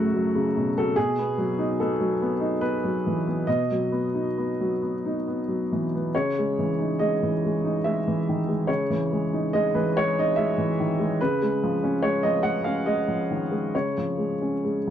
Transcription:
Already playing: F#2 C#3 F#3 A3 F#4 A4
0.14 F#3
0.35 C#3
0.57 B2
0.78 F#3 A4
0.96 B2 G#4
1.19 B3
1.38 F#3
1.58 D#4
1.80 B3 A4
2.01 F#3
2.22 B3
2.40 D#4
2.61 B3 B4
2.84 F#3
3.07 E3
3.27 B3
3.47 B2 D#5
3.71 F#3
3.92 B3
4.14 D#4
4.38 B3
4.60 F#3
4.82 B3
5.05 D#4
5.28 B3
5.48 F#3
5.72 E3
5.95 B3
6.15 C#3 C#5
6.39 G#3
6.59 E3
6.79 D#4
6.99 G#3 D#5
7.23 E3
7.45 G#3
7.64 D#4
7.84 G#3 E5
8.07 E3
8.29 D#3
8.48 G#3
8.67 C#3 C#5
8.90 E3
9.12 G#3
9.33 D#4
9.53 G#3 D#5
9.74 E3 B4
9.97 G#3 C#5
10.19 D#4 D#5
10.36 G#3 E5
10.58 E3
10.80 D#3
11.00 G#3
11.21 C#3 B4
11.42 G#3
11.63 F3
11.83 C#4
12.03 G#3 C#5
12.23 F3 D#5
12.43 G#3 F#5
12.64 C#4 F5
12.86 G#3 D#5
13.08 F3
13.31 D#3
13.51 G#3
13.75 C#3 C#5
13.97 F3
14.18 G#3
14.42 C#4
14.64 G#3

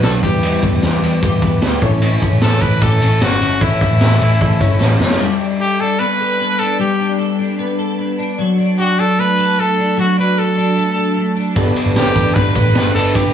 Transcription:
Already playing: F#3 B3 D4 F#4 B4
0.03 B1 B2 F#3 B3 D4 F#4 A4, snare, ride, tambourine
0.23 E2 G3 B3 E4 G4 B4, kick, ride, tambourine
0.42 E3 G3 B3 E4, ride
0.62 G3 B3 E4, kick, ride, tambourine
0.72 E2
0.82 E2 E3 G3 B3 E4 G4, snare, ride, tambourine
1.02 E2 G3 B3 D4 E4, ride, tambourine
1.13 E4
1.21 E2 E3 G3 B3 E4 G4, kick, ride, tambourine
1.41 E2 G3 B3 E4, kick, ride
1.61 D2 E3 G3 B3 E4 G4 B4, snare, ride, tambourine
1.81 A1 A3 C#4 E4 A4 C#5, kick, ride, tambourine
2.01 A2 E3 A3 C#4 E4, ride, tambourine
2.21 A3 C#4 E4, kick, ride, tambourine
2.31 A1
2.41 A1 A2 E3 A3 C#4 E4 A4, snare, ride, tambourine
2.61 A1 A3 C#4 E4 B4, kick, ride, tambourine
2.81 A1 E3 A3 C#4 E4 G4 A4, kick, ride, tambourine
2.92 A4
3.01 A1 A3 C#4 E4, ride
3.21 G1 A2 E3 A3 C#4 E4 F#4 A4, snare, ride, tambourine
3.41 G1 A3 C#4 E4, ride, tambourine
3.60 A1 A2 E3 A3 C#4 E4, kick, ride, tambourine
3.81 A3 C#4 E4, kick, ride, tambourine
3.91 A1
4.00 A1 A2 E3 A3 C#4 E4 A4, snare, ride, tambourine
4.20 A1 A3 C#4 E4, ride, tambourine
4.41 A1 E3 A3 C#4 E4 A4, kick, ride, tambourine
4.60 G1 A3 C#4 E4 A4 C#5, kick, ride
4.80 A1 A2 E3 A3 C#4 E4 A4, snare, tambourine
4.99 F#1 A3 C#4 E4, snare, tambourine
5.10 snare
5.21 G3
5.41 D4
5.60 G4 A4
5.80 D4 A4
5.99 B3 B4
6.20 A4
6.40 B3
6.59 D4 A4
6.79 G3 G4
6.99 D4
7.19 A4
7.39 D4
7.59 B3
7.79 A4
7.99 B3
8.19 D4
8.39 F#3
8.58 D4
8.78 F#4 G4
8.88 A4
8.98 D4 A4
9.18 A3 B4
9.38 A4
9.58 A3 A4
9.77 D4
9.97 F#3 F#4
10.17 D4 B4
10.37 A4
10.57 D4
10.77 A3
10.97 A4
11.17 A3
11.37 D4
11.56 G1 G3 A3 B3 D4 G4 A4 B4, kick, ride, tambourine
11.75 D4 G4 B4, ride, tambourine
11.86 G1
11.95 G1 G3 A3 D4 G4 B4, snare, ride, tambourine
12.06 A4
12.15 A1 D4 G4 B4, kick, ride, tambourine
12.34 G1 A3 B3 D4 G4 B4, kick, ride, tambourine
12.55 A1 D4 G4 A4 B4, kick, ride, tambourine
12.75 G1 G3 A3 B3 D4 G4 B4, snare, ride, tambourine
12.94 G1 D4 G4 A4 B4, open hi-hat, ride, tambourine
13.14 G1 G3 A3 B3 D4 G4 B4, kick, hi-hat pedal, ride, tambourine

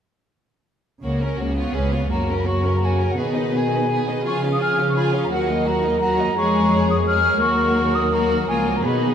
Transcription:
1.03 C#2 C#3 A#3 F#4 C#5
1.21 C#4 A#4
1.38 C#2 C#3 A#3 F#4 C#5
1.56 B3 F4 C#5
1.72 C#2 C#3 C#4 G#4 B4
1.91 B3 F4 C#5
2.10 F#2 C#3 A#3 F#4 C#5 A#5
2.29 C#4 A#4
2.39 B5
2.45 A#3 F#4 C#5 C#6
2.64 C#4 A#4
2.75 A#5
2.81 A#3 F#4 C#5 G#5
2.98 C#4 A#4
3.11 F#5
3.17 B2 D#3 B3 G#4 B4 D#5
3.35 D#4 B4 D#5
3.53 B3 G#4 B4 G#5
3.71 D#4 B4 D#5
3.89 B3 G#4 B4
4.07 D#4 B4 D#5
4.24 C#3 F3 F4 G#4 G#5 C#6
4.41 C#4 F4 F5
4.52 D#6
4.59 F4 G#4 G#5 F6
4.78 C#4 F4 F5
4.89 C#6
4.94 F4 G#4 G#5 B5
5.11 C#4 F4
5.15 F5
5.24 A#5
5.29 D#2 F#3 F#4 A#4 F#5
5.47 A#3 D#4 D#5
5.65 F#3 F#4 F#5 A#5
5.82 A#3 D#4 D#5
6.00 F#3 F#4 F#5 A#5
6.19 A#3 D#4 D#5
6.36 F2 G#3 G#4 C#5 C#6
6.90 D#6
7.07 G#3 G#4 C#5 F6
7.40 D#2 F#3 A#3 F#4 A#4 C#6
7.94 D#6
8.12 A#3 F#4 A#4 A#5
8.47 C#2 F3 A#3 F4 A#4 G#5
8.76 A#5
8.83 B2 D#3 B3 D#4 G#4 B5

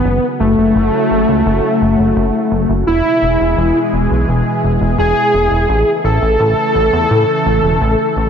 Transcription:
Already playing: B3
0.04 F#1 C#3 F#3 A3 E4 F#4
0.40 F#1 A3
0.58 F#1
0.75 F#1
1.11 F#1
1.28 C#2
1.46 F#1
1.81 F#1
1.99 F#1
2.16 F#1
2.52 F#1
2.69 F#1
2.87 E1 B2 E3 G#3 E4 G#4
3.22 E1
3.40 E1
3.57 E1
3.93 E1
4.10 B1
4.28 E1
4.63 E1
4.81 E1
4.98 E1 G#4
5.34 E1
5.51 E1
5.69 A1 C#3 E3 A3 A4
6.04 A1 A4
6.22 A1
6.40 A1
6.75 A1
6.93 E2
7.10 A2
7.46 A1
7.63 E1
7.81 A1
8.16 A1

